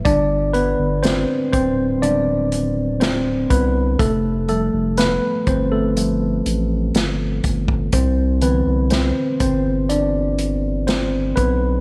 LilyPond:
<<
  \new Staff \with { instrumentName = "Tine electric piano" } { \time 4/4 \key g \mixolydian \tempo 4 = 61 <d' d''>8 <b b'>8 <c' c''>8 <c' c''>8 <d' d''>4 <c' c''>8 <b b'>8 | <a a'>8 a'8 <b b'>8 <c' c''>16 <a a'>4.~ <a a'>16 r8 | <c' c''>8 <b b'>8 <c' c''>8 <c' c''>8 <d' d''>4 <c' c''>8 <b b'>8 | }
  \new Staff \with { instrumentName = "Tine electric piano" } { \clef bass \time 4/4 \key g \mixolydian <d g>4. r8 <d g b>8 r4. | r8 <f g a>8 r4 <f g a>8 r4. | r8 <d e c'>8 r2. | }
  \new Staff \with { instrumentName = "Sub bass" } { \clef bass \time 4/4 \key g \mixolydian g,,8. g,,8 r16 d,,2 c,8 | f,,8. f,,8 r16 g,,4 a,,8 g,,8 g,,8 | c,8. c,8 r16 g,,2 b,,8 | }
  \new DrumStaff \with { instrumentName = "Drums" } \drummode { \time 4/4 <hh bd>8 hh8 <hh sn>8 <hh bd>8 hh8 hh8 <hh sn>8 <hh bd>8 | <hh bd>8 hh8 <hh sn>8 <hh bd>8 hh8 hh8 <hh sn>8 <hh bd>16 bd16 | <hh bd>8 hh8 <hh sn>8 <hh bd>8 hh8 hh8 <hh sn>8 <hh bd>8 | }
>>